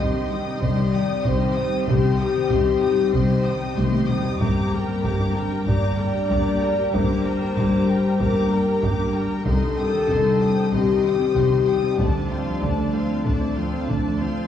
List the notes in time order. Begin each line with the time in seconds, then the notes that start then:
Already playing: G3 C4 G4 C5 D#5
0.00 C2 C3 D#3 G4 D#5 C6
0.14 G3
0.29 G3 D#4 G5 D#6
0.47 C4
0.61 C2 C3 D#3 G4 D5 D#5 C6, taiko
0.79 C4
0.93 D#3 G3 D#4 G5 D#6
1.10 C4
1.25 C2 C3 D#3 G4 C5 D#5 C6, taiko
1.42 D#3
1.55 G3 C4 D#4 G5 D#6
1.73 C4
1.87 C2 C3 D#3 G4 D#5 C6, taiko
2.19 G3 D#4 G5 D#6
2.37 D#3
2.51 C2 C3 D#3 G4 D#5 C6, taiko
2.68 G3
2.81 G3 D#4 G5 D#6
2.99 C4
3.12 C2 C3 D#3 G4 C5 D#5 C6, taiko
3.31 C4
3.45 D#3 G3 D#4 G5 D#6
3.62 C4
3.77 C2 C3 D#3 G4 D#5 C6, taiko high
3.93 D#3, taiko high
4.08 G3 C4 D#4 G5 D#6, taiko mid
4.24 C4, taiko low
4.40 G1 G2 G3 A#3 D4 G4 A#4 A#5 D6, taiko
4.72 G3 A#4 G5 A#5
4.89 A#3
5.04 G1 G2 G3 A#3 G4 A#5 D6, taiko
5.20 D4
5.36 G3 D4 A#4 G5 A#5
5.52 G4
5.66 G1 G2 G3 A#3 G4 D5 A#5 D6, taiko
5.84 G4
5.97 G3 A#3 A#4 G5 A#5
6.15 G4
6.30 G1 G2 G3 A#3 G4 A#5 D6, taiko
6.48 A#3
6.62 G3 G4 A#4 G5 A#5
6.79 G4
6.93 G1 G2 G3 A#3 G4 C5 A#5 D6, taiko
7.25 G3 A#4 G5 A#5
7.41 A#3
7.57 G1 G2 G3 A#3 G4 A#5 D6, taiko
7.72 D4
7.88 G3 D4 A#4 G5 A#5
8.05 G4
8.19 G1 G2 G3 A#3 G4 A#4 A#5 D6, taiko
8.36 G4
8.51 G3 A#3 A#4 G5 A#5
8.68 G4
8.83 G1 G2 G3 A#3 G4 A#5 D6, taiko
8.99 A#3
9.14 G3 G4 A#4 G5 A#5
9.30 G4
9.46 C2 C3 D#3 G3 D#4 G4 A4 C5 D#5 C6, taiko
9.77 G3 C4 G5 D#6
9.94 D#3
10.09 C2 C3 D#3 D#4 D#5 C6, taiko
10.26 G3
10.41 G3 C4 G5 D#6
10.57 C4
10.72 C2 C3 D#3 D#4 G4 D#5 C6, taiko
10.88 C4
11.04 D#3 G3 C4 G5 D#6
11.20 C4
11.35 C2 C3 D#3 D#4 D#5 C6, taiko
11.51 D#3
11.67 G3 C4 G5 D#6
11.83 C4
11.98 D2 D3 F3 A3 D4 A4 D5 A5, taiko
12.30 C4 F4 F5 C6
12.46 F3
12.61 D2 D3 A3 D4 D5 A5, taiko
12.78 A3
12.93 A3 C4 F4 F5 C6
13.09 C4
13.25 D2 D3 A3 D4 D5 A5, taiko
13.41 C4
13.56 F3 C4 F4 F5 C6
13.73 C4
13.86 D2 D3 A3 D4 D5 A5, taiko
14.06 F3
14.18 C4 F4 F5 C6
14.37 C4